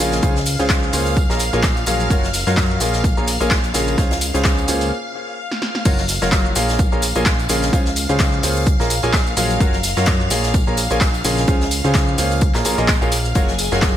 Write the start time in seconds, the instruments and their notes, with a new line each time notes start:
Already playing: string machine F5
0.00 analog synth bass A#1, grand piano C#3 F4 G#4 A#4 C#5 F5, closed hi-hat, tambourine
0.12 snare, tambourine, shaker
0.23 analog synth bass C#2, grand piano C#3 F4 G#4 C5 C#5 F5, kick, closed hi-hat, tambourine, shaker
0.36 snare, shaker
0.46 closed hi-hat, open hi-hat, tambourine, shaker
0.59 analog synth bass C#2, grand piano C#3 F4 G#4 C5 C#5 F5, tambourine, shaker
0.69 kick, snare, clap, closed hi-hat, tambourine, shaker
0.83 shaker
0.93 analog synth bass C#2, grand piano A#3 F4 G#4 C5 C#5 F5, open hi-hat, tambourine, shaker
1.06 tambourine, shaker
1.17 kick, closed hi-hat, tambourine, shaker
1.30 analog synth bass A#1, grand piano A#3 F4 G#4 A#4 C#5 A#5, snare, shaker
1.39 closed hi-hat, open hi-hat, tambourine, shaker
1.53 analog synth bass A#1, grand piano A#3 F4 G#4 A#4 C#5 G#5, tambourine, shaker
1.63 kick, snare, clap, closed hi-hat, tambourine, shaker
1.77 tambourine, shaker
1.86 analog synth bass A#1, grand piano F#3 F4 G#4 A#4 C#5 F5, closed hi-hat, open hi-hat, tambourine, shaker
2.00 tambourine, shaker
2.10 analog synth bass F#1, grand piano F#3 F4 F#4 A#4 C#5 F5, kick, closed hi-hat, tambourine, shaker
2.24 snare, shaker
2.33 snare, closed hi-hat, open hi-hat, tambourine, shaker
2.47 analog synth bass F#2, grand piano F#3 F4 F#4 A#4 C#5 F5, snare, tambourine, shaker
2.57 kick, snare, clap, closed hi-hat, tambourine, shaker
2.70 shaker
2.80 analog synth bass A#1, grand piano A#3 F4 G#4 A#4 C#5 F5, snare, closed hi-hat, open hi-hat, tambourine, shaker
2.93 snare, tambourine, shaker
3.04 kick, closed hi-hat, tambourine, shaker
3.17 analog synth bass A#1, grand piano A#3 F4 G#4 A#4 C#5 A#5, shaker
3.28 closed hi-hat, open hi-hat, tambourine, shaker
3.40 analog synth bass A#1, grand piano A#3 F4 G#4 A#4 C#5 G#5, closed hi-hat, tambourine, shaker
3.51 kick, snare, clap, closed hi-hat, tambourine, shaker
3.64 closed hi-hat, tambourine, shaker
3.74 analog synth bass A#1, grand piano C#3 F4 G#4 A#4 C#5 F5, snare, closed hi-hat, open hi-hat, tambourine, shaker
3.87 tambourine, shaker
3.98 analog synth bass C#2, grand piano C#3 F4 G#4 C5 C#5 F5, kick, snare, closed hi-hat, tambourine, shaker
4.11 snare, closed hi-hat, shaker
4.21 open hi-hat, tambourine, shaker
4.34 analog synth bass C#2, grand piano C#3 F4 G#4 C5 C#5 F5, snare, closed hi-hat, tambourine, shaker
4.44 kick, snare, clap, closed hi-hat, tambourine, shaker
4.58 tambourine, shaker
4.68 analog synth bass C#2, grand piano A#3 F4 G#4 C5 C#5 F5, open hi-hat, tambourine, shaker
4.81 open hi-hat, tambourine, shaker
5.51 snare
5.62 snare
5.75 snare
5.85 analog synth bass F#1, grand piano F#3 F4 F#4 A#4 C#5 F5, string machine F5, kick, closed hi-hat, crash, tambourine, shaker
5.98 snare, shaker
6.08 snare, closed hi-hat, open hi-hat, tambourine, shaker
6.22 analog synth bass F#1, grand piano F#3 F4 F#4 A#4 C#5 F5, snare, tambourine, shaker
6.32 kick, snare, clap, closed hi-hat, tambourine, shaker
6.45 shaker
6.55 analog synth bass A#1, grand piano A#3 F4 G#4 A#4 C#5 F5, snare, closed hi-hat, open hi-hat, tambourine, shaker
6.68 snare, tambourine, shaker
6.79 kick, closed hi-hat, tambourine, shaker
6.92 analog synth bass A#1, grand piano A#3 F4 G#4 A#4 C#5 A#5, shaker
7.02 closed hi-hat, open hi-hat, tambourine, shaker
7.15 analog synth bass A#1, grand piano A#3 F4 G#4 A#4 C#5 G#5, closed hi-hat, tambourine, shaker
7.26 kick, snare, clap, closed hi-hat, tambourine, shaker
7.39 closed hi-hat, tambourine, shaker
7.49 analog synth bass A#1, grand piano C#3 F4 G#4 A#4 C#5 F5, snare, closed hi-hat, open hi-hat, tambourine, shaker
7.62 snare, tambourine, shaker
7.73 analog synth bass C#2, grand piano C#3 F4 G#4 C5 C#5 F5, kick, closed hi-hat, tambourine, shaker
7.85 snare, shaker
7.96 closed hi-hat, open hi-hat, tambourine, shaker
8.09 analog synth bass C#2, grand piano C#3 F4 G#4 C5 C#5 F5, tambourine, shaker
8.19 kick, snare, clap, closed hi-hat, tambourine, shaker
8.33 shaker
8.43 analog synth bass C#2, grand piano A#3 F4 G#4 C5 C#5 F5, open hi-hat, tambourine, shaker
8.56 tambourine, shaker
8.66 kick, closed hi-hat, tambourine, shaker
8.80 analog synth bass A#1, grand piano A#3 F4 G#4 A#4 C#5 A#5, snare, shaker
8.90 closed hi-hat, open hi-hat, tambourine, shaker
9.02 analog synth bass A#1, grand piano A#3 F4 G#4 A#4 C#5 G#5, tambourine, shaker
9.13 kick, snare, clap, closed hi-hat, tambourine, shaker
9.26 tambourine, shaker
9.37 analog synth bass A#1, grand piano F#3 F4 G#4 A#4 C#5 F5, closed hi-hat, open hi-hat, tambourine, shaker
9.50 tambourine, shaker
9.60 analog synth bass F#1, grand piano F#3 F4 F#4 A#4 C#5 F5, kick, closed hi-hat, tambourine, shaker
9.73 snare, shaker
9.83 snare, closed hi-hat, open hi-hat, tambourine, shaker
9.97 analog synth bass F#2, grand piano F#3 F4 F#4 A#4 C#5 F5, snare, tambourine, shaker
10.06 kick, snare, clap, closed hi-hat, tambourine, shaker
10.21 shaker
10.30 analog synth bass A#1, grand piano A#3 F4 G#4 A#4 C#5 F5, snare, closed hi-hat, open hi-hat, tambourine, shaker
10.43 snare, tambourine, shaker
10.54 kick, closed hi-hat, tambourine, shaker
10.67 analog synth bass A#1, grand piano A#3 F4 G#4 A#4 C#5 A#5, shaker
10.77 closed hi-hat, open hi-hat, tambourine, shaker
10.90 analog synth bass A#1, grand piano A#3 F4 G#4 A#4 C#5 G#5, closed hi-hat, tambourine, shaker
11.01 kick, snare, clap, closed hi-hat, tambourine, shaker
11.14 closed hi-hat, tambourine, shaker
11.24 analog synth bass A#1, grand piano C#3 F4 G#4 A#4 C#5 F5, snare, closed hi-hat, open hi-hat, tambourine, shaker
11.37 snare, tambourine, shaker
11.47 analog synth bass C#2, grand piano C#3 F4 G#4 C5 C#5 F5, kick, closed hi-hat, tambourine, shaker
11.61 snare, shaker
11.71 closed hi-hat, open hi-hat, tambourine, shaker
11.84 analog synth bass C#2, grand piano C#3 F4 G#4 C5 C#5 F5, tambourine, shaker
11.94 kick, snare, clap, closed hi-hat, tambourine, shaker
12.08 shaker
12.18 analog synth bass C#2, grand piano A#3 F4 G#4 C5 C#5 F5, open hi-hat, tambourine, shaker
12.31 tambourine, shaker
12.41 kick, closed hi-hat, tambourine, shaker
12.54 analog synth bass A#1, grand piano A#3 F4 G#4 A#4 C#5 A#5, snare, clap, tambourine, shaker
12.65 analog synth bass A#1, grand piano A#3 F4 G#4 A#4 C#5 A#5, closed hi-hat, open hi-hat, tambourine, shaker
12.78 analog synth bass A#1, grand piano A#3 F4 G#4 A#4 C#5 D#5, tambourine, shaker
12.88 kick, snare, clap, closed hi-hat, tambourine, shaker
13.01 analog synth bass A#1, grand piano A#3 F4 G#4 A#4 C#5 F5, tambourine, shaker
13.12 closed hi-hat, open hi-hat, tambourine, shaker
13.25 tambourine, shaker
13.35 analog synth bass F#1, grand piano F#3 F4 F#4 A#4 C#5 F5, string machine G#4 G#5, kick, closed hi-hat, tambourine, shaker
13.48 snare, shaker
13.58 snare, closed hi-hat, open hi-hat, tambourine, shaker
13.72 analog synth bass F#1, grand piano F#3 F4 F#4 A#4 C#5 F5, snare, tambourine, shaker
13.82 kick, snare, clap, closed hi-hat, tambourine, shaker